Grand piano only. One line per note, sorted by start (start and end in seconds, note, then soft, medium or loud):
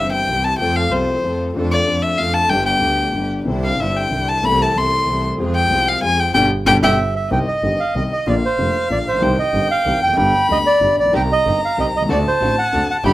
0.00 0.27 G1 soft
0.00 0.27 G2 soft
0.00 0.26 E3 soft
0.00 0.27 G3 soft
0.00 0.27 C4 soft
0.00 0.28 G4 soft
0.27 0.59 C2 soft
0.27 0.59 C3 soft
0.27 0.58 E3 soft
0.27 0.59 G3 soft
0.27 0.59 C4 soft
0.27 0.60 G4 soft
0.58 0.91 F2 medium
0.58 0.89 F3 medium
0.58 0.90 A3 soft
0.58 0.91 C4 soft
0.58 0.92 A4 medium
0.91 1.22 C2 soft
0.91 1.22 C3 soft
0.91 1.21 F3 soft
0.91 1.22 A3 soft
0.91 1.23 C4 soft
0.95 1.24 A4 soft
1.24 1.54 F2 soft
1.24 1.52 F3 soft
1.24 1.54 A3 soft
1.24 1.54 C4 soft
1.24 1.55 A4 soft
1.55 1.85 F2 medium
1.55 1.84 F3 medium
1.55 1.85 A3 medium
1.55 1.86 D4 medium
1.55 1.87 A4 medium
1.86 2.17 F2 soft
1.86 2.15 F3 soft
1.86 2.17 A3 soft
1.86 2.17 D4 soft
1.86 2.18 A4 soft
2.17 2.49 F2 soft
2.17 2.18 F3 soft
2.17 2.49 F3 soft
2.17 2.49 A3 soft
2.17 2.49 D4 soft
2.21 2.50 A4 soft
2.49 2.81 G1 medium
2.49 2.81 G2 medium
2.49 2.79 D3 soft
2.49 2.80 G3 soft
2.49 2.81 B3 soft
2.49 2.82 G4 medium
2.80 3.13 D2 soft
2.80 3.11 D3 soft
2.80 3.12 G3 soft
2.80 3.13 B3 soft
2.84 3.14 G4 soft
3.13 3.46 G1 soft
3.13 3.46 G2 soft
3.13 3.44 D3 soft
3.13 3.45 G3 soft
3.13 3.46 B3 soft
3.17 3.47 G4 soft
3.46 3.78 C2 medium
3.46 3.78 C3 medium
3.46 3.76 D3 medium
3.46 3.77 G3 soft
3.46 3.79 C4 soft
3.46 3.79 E4 medium
3.78 4.10 G1 soft
3.78 4.10 G2 soft
3.78 4.08 D3 soft
3.78 4.09 G3 soft
3.78 4.11 C4 soft
3.82 4.11 E4 soft
4.09 4.42 C2 soft
4.09 4.42 C3 soft
4.09 4.41 D3 soft
4.09 4.42 G3 soft
4.09 4.43 C4 soft
4.14 4.43 E4 soft
4.41 4.74 C2 medium
4.41 4.74 C3 medium
4.41 4.72 E3 soft
4.41 4.74 A3 medium
4.41 4.74 C4 soft
4.41 4.75 A4 medium
4.74 5.06 C2 soft
4.74 5.06 C3 soft
4.74 5.04 E3 soft
4.74 5.05 A3 soft
4.74 5.06 C4 soft
4.74 5.07 A4 soft
5.05 5.38 C2 soft
5.05 5.38 C3 soft
5.05 5.37 E3 soft
5.05 5.37 A3 soft
5.05 5.38 C4 soft
5.09 5.39 A4 soft
5.39 5.69 F2 medium
5.39 5.67 F3 medium
5.39 5.68 G#3 soft
5.39 5.69 C4 soft
5.39 5.70 G#4 medium
5.68 6.01 C2 soft
5.68 6.01 C3 soft
5.68 5.99 F3 soft
5.68 6.00 G#3 soft
5.68 6.01 C4 soft
5.72 6.02 G#4 soft
6.02 6.33 F2 soft
6.02 6.33 F3 soft
6.02 6.32 G#3 soft
6.02 6.33 C4 soft
6.02 6.34 G#4 soft
6.34 6.45 B2 medium
6.34 6.45 D3 medium
6.34 6.45 G3 medium
6.66 6.77 B2 medium
6.66 6.77 D3 medium
6.66 6.77 G3 medium
6.83 6.93 B2 medium
6.83 6.93 D3 medium
6.83 6.93 G3 medium
7.31 7.44 C2 medium
7.31 7.44 C3 medium
7.31 7.44 D#3 medium
7.31 7.44 G3 medium
7.31 7.44 C4 medium
7.31 7.45 G4 medium
7.63 7.77 G1 soft
7.63 7.77 G2 soft
7.63 7.76 D#3 soft
7.63 7.77 G3 soft
7.63 7.77 C4 soft
7.63 7.77 G4 soft
7.95 8.09 C2 soft
7.95 8.09 C3 soft
7.95 8.09 D#3 soft
7.95 8.09 G3 soft
7.95 8.09 C4 soft
7.95 8.09 G4 soft
8.27 8.40 A#1 medium
8.27 8.40 A#2 medium
8.27 8.40 D3 medium
8.27 8.40 F3 medium
8.27 8.40 A#3 medium
8.27 8.40 F4 medium
8.59 8.72 F1 soft
8.59 8.72 F2 soft
8.59 8.72 D3 soft
8.59 8.72 F3 soft
8.59 8.72 A#3 soft
8.59 8.72 F4 soft
8.90 9.04 A#1 soft
8.90 9.04 A#2 soft
8.90 9.04 D3 soft
8.90 9.04 F3 soft
8.90 9.04 A#3 soft
8.90 9.04 F4 soft
9.10 9.14 A1 soft
9.15 9.18 A#1 medium
9.15 9.22 B1 medium
9.22 9.35 C2 medium
9.22 9.35 C3 medium
9.22 9.35 D#3 medium
9.22 9.35 G3 medium
9.22 9.35 C4 medium
9.22 9.35 G4 medium
9.53 9.67 G1 soft
9.53 9.67 G2 soft
9.53 9.67 D#3 soft
9.53 9.67 G3 soft
9.53 9.67 C4 soft
9.53 9.67 G4 soft
9.85 9.98 C2 soft
9.85 9.98 C3 medium
9.85 9.98 D#3 soft
9.85 9.98 G3 soft
9.85 9.98 C4 soft
9.85 9.98 G4 soft
10.05 10.09 E2 soft
10.05 10.13 F2 medium
10.13 10.17 F#2 medium
10.13 10.30 G2 medium
10.13 10.30 D3 medium
10.13 10.30 G3 medium
10.17 10.31 G1 medium
10.17 10.31 B3 medium
10.17 10.31 G4 medium
10.49 10.62 D2 soft
10.49 10.62 D3 soft
10.49 10.62 G3 soft
10.49 10.62 B3 soft
10.49 10.62 G4 soft
10.81 10.95 G1 soft
10.81 10.95 G2 soft
10.81 10.95 D3 soft
10.81 10.95 G3 soft
10.81 10.95 B3 soft
10.81 10.95 G4 soft
11.01 11.05 A1 soft
11.05 11.09 A#1 soft
11.05 11.13 B1 medium
11.13 11.27 C2 medium
11.13 11.27 C3 medium
11.13 11.27 D#3 medium
11.13 11.27 G3 medium
11.13 11.27 C4 medium
11.13 11.27 G4 medium
11.46 11.59 G1 soft
11.46 11.59 G2 soft
11.46 11.59 D#3 soft
11.46 11.59 G3 soft
11.46 11.59 C4 soft
11.46 11.59 G4 soft
11.77 11.91 C2 soft
11.77 11.91 C3 soft
11.77 11.91 D#3 soft
11.77 11.91 G3 soft
11.77 11.91 C4 soft
11.77 11.91 G4 soft
11.98 12.02 B1 soft
12.02 12.06 C2 medium
12.02 12.09 C#2 medium
12.09 12.23 D2 medium
12.09 12.23 D3 medium
12.09 12.23 A3 medium
12.09 12.23 C4 medium
12.09 12.23 F#4 medium
12.41 12.54 A1 soft
12.41 12.54 A2 soft
12.41 12.54 D3 soft
12.41 12.54 A3 soft
12.41 12.54 C4 soft
12.41 12.54 F#4 soft
12.73 12.86 D2 soft
12.73 12.86 D3 soft
12.73 12.86 A3 soft
12.73 12.87 C4 soft
12.73 12.87 F#4 soft
13.04 13.13 G1 medium
13.04 13.13 G2 medium
13.04 13.13 D3 medium
13.04 13.13 G3 medium
13.04 13.13 B3 medium
13.04 13.13 G4 medium